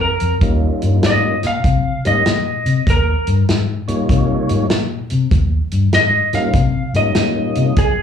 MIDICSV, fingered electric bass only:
0, 0, Header, 1, 2, 480
1, 0, Start_track
1, 0, Tempo, 612996
1, 329, Time_signature, 4, 2, 24, 8
1, 6284, End_track
2, 0, Start_track
2, 0, Title_t, "Fingered electric bass"
2, 0, Program_c, 0, 33
2, 167, Note_on_c, 0, 41, 76
2, 280, Note_off_c, 0, 41, 0
2, 324, Note_on_c, 0, 39, 95
2, 542, Note_off_c, 0, 39, 0
2, 649, Note_on_c, 0, 43, 80
2, 762, Note_off_c, 0, 43, 0
2, 810, Note_on_c, 0, 44, 91
2, 1026, Note_off_c, 0, 44, 0
2, 1128, Note_on_c, 0, 46, 86
2, 1241, Note_off_c, 0, 46, 0
2, 1283, Note_on_c, 0, 48, 78
2, 1501, Note_off_c, 0, 48, 0
2, 1615, Note_on_c, 0, 44, 87
2, 1726, Note_off_c, 0, 44, 0
2, 1773, Note_on_c, 0, 46, 77
2, 1988, Note_off_c, 0, 46, 0
2, 2081, Note_on_c, 0, 48, 80
2, 2196, Note_off_c, 0, 48, 0
2, 2243, Note_on_c, 0, 39, 98
2, 2462, Note_off_c, 0, 39, 0
2, 2565, Note_on_c, 0, 43, 85
2, 2679, Note_off_c, 0, 43, 0
2, 2734, Note_on_c, 0, 44, 93
2, 2949, Note_off_c, 0, 44, 0
2, 3040, Note_on_c, 0, 46, 86
2, 3156, Note_off_c, 0, 46, 0
2, 3202, Note_on_c, 0, 48, 85
2, 3421, Note_off_c, 0, 48, 0
2, 3526, Note_on_c, 0, 44, 86
2, 3640, Note_off_c, 0, 44, 0
2, 3686, Note_on_c, 0, 46, 86
2, 3903, Note_off_c, 0, 46, 0
2, 4007, Note_on_c, 0, 48, 80
2, 4120, Note_off_c, 0, 48, 0
2, 4164, Note_on_c, 0, 39, 105
2, 4382, Note_off_c, 0, 39, 0
2, 4483, Note_on_c, 0, 43, 80
2, 4598, Note_off_c, 0, 43, 0
2, 4639, Note_on_c, 0, 44, 92
2, 4859, Note_off_c, 0, 44, 0
2, 4960, Note_on_c, 0, 46, 85
2, 5075, Note_off_c, 0, 46, 0
2, 5117, Note_on_c, 0, 48, 84
2, 5337, Note_off_c, 0, 48, 0
2, 5432, Note_on_c, 0, 44, 82
2, 5550, Note_off_c, 0, 44, 0
2, 5610, Note_on_c, 0, 46, 83
2, 5826, Note_off_c, 0, 46, 0
2, 5924, Note_on_c, 0, 48, 80
2, 6038, Note_off_c, 0, 48, 0
2, 6083, Note_on_c, 0, 34, 97
2, 6284, Note_off_c, 0, 34, 0
2, 6284, End_track
0, 0, End_of_file